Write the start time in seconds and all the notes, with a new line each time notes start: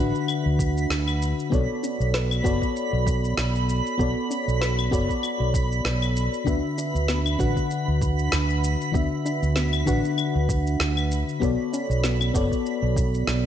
Already playing: A1 D3 D4 F#4 B4 E5 B5
0.00 F#5
0.15 shaker
0.28 claves, shaker
0.46 D2
0.59 kick, shaker
0.77 shaker
0.90 D2, snare, shaker
1.08 claves, shaker
1.22 shaker
1.40 shaker
1.50 B1 B3 F#4 A4 C#5, kick, shaker
1.54 D5
1.83 C#4, shaker
2.00 B1, shaker
2.14 B4, snare, shaker
2.31 claves, shaker
2.44 F#1 B3 F#4 A4 C#5 D5, kick, shaker
2.62 kick, shaker
2.76 shaker
2.93 B1
3.07 kick, shaker
3.24 shaker
3.38 B1, snare, shaker
3.55 shaker
3.69 shaker
3.86 shaker
3.98 B1 B3 F#4 A4 C#5, kick, shaker
4.02 D5
4.30 C#4, shaker
4.48 B1, shaker
4.61 B4, snare, shaker
4.79 claves, shaker
4.91 F#1 B3 F#4 A4 C#5 D5, kick, shaker
5.09 kick, shaker
5.23 claves, shaker
5.40 B1
5.54 kick, shaker
5.72 shaker
5.85 B1 B4, snare, shaker
6.02 claves, shaker
6.16 shaker
6.34 shaker
6.45 D2 D3 B3 D4 F#4 B4, kick, shaker
6.49 E5
6.78 D4, shaker
6.95 D2, shaker
7.08 B3, snare, shaker
7.26 claves, shaker
7.38 A1 D3 D4 F#4 B4 F#5, kick, shaker
7.57 kick, shaker
7.71 shaker
7.88 D2
8.01 kick, shaker
8.19 shaker
8.32 D2, snare, shaker
8.50 shaker
8.64 shaker
8.81 shaker
8.92 D2 D3 B3 D4 F#4 B4, kick, shaker
8.96 E5
9.25 D4, shaker
9.43 D2, shaker
9.56 B3, snare, shaker
9.73 claves, shaker
9.86 A1 D3 D4 F#4 B4 F#5, kick, shaker
10.05 shaker
10.18 claves, shaker
10.36 D2
10.49 kick, shaker
10.67 shaker
10.80 D2, snare, shaker
10.97 claves, shaker
11.11 shaker
11.29 shaker
11.40 B1 B3 F#4 A4 C#5, kick, shaker
11.44 D5
11.73 C#4, shaker
11.90 B1, shaker
12.04 B3, snare, shaker
12.21 claves, shaker
12.34 F#1 B3 F#4 A4 C#5 D5, kick, shaker
12.52 kick, shaker
12.66 shaker
12.83 B1
12.96 kick, shaker
13.14 shaker
13.27 B1, snare, shaker